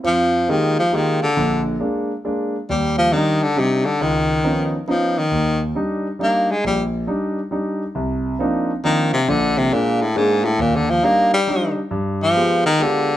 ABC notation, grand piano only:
X:1
M:3/4
L:1/8
Q:"Swing" 1/4=136
K:Eb
V:1 name="Grand piano"
[F,,F,]2 [A,B,EFG] z [A,B,EFG] z | [B,,,D,]2 [A,B,D] z [A,B,D] z | [E,,G,]2 [G,DE] z [G,DE] z | _D,,2 [F,_C_DE] z [F,CDE] z |
E,,2 [G,DE] z [G,DE] z | B,,,2 [G,DE] z [G,DE] z | [K:Cm] C,,2 [F,B,CDE] z [F,B,CDE] z | [B,,,D,]2 [A,B,D] z [A,B,D] z |
E,,2 [G,DE] z [G,DE] z | G,,2 [A,=B,FG] z [A,B,FG] z |]